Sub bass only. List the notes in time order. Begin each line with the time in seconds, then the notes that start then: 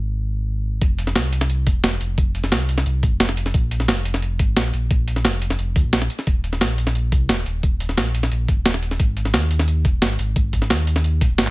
Already playing: G#1
0.82 F1
1.16 C2
1.67 D#1
1.84 F1
2.01 F1
2.52 C2
2.86 C2
3.03 A#1
3.12 F1
3.54 A#1
3.88 F1
4.39 G#1
4.56 A#1
4.74 A#1
5.25 F1
5.59 F1
5.76 D2
5.85 A#1
6.27 D#1
6.61 A#1
7.12 C2
7.29 D#1
7.46 D#1
7.97 A#1
8.31 A#1
8.49 G1
8.57 D#1
9.00 G#1
9.34 D#2
9.85 D#1
10.02 G#1
10.19 G#1
10.70 D#2
11.21 G#1
11.30 D#1
11.38 G#1